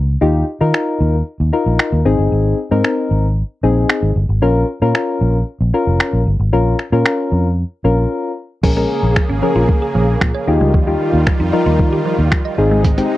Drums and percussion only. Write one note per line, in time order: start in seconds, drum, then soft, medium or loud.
0.74 finger snap loud
1.79 finger snap loud
2.84 finger snap loud
3.90 finger snap loud
4.95 finger snap loud
6.00 finger snap loud
6.79 finger snap medium
7.06 finger snap loud
8.63 kick loud
8.63 crash medium
9.16 finger snap loud
9.16 kick loud
9.69 kick loud
10.21 finger snap loud
10.21 kick loud
10.74 kick loud
11.27 finger snap loud
11.27 kick loud
11.79 kick loud
12.32 finger snap loud
12.32 kick loud
12.84 kick loud
12.84 closed hi-hat medium
12.98 closed hi-hat medium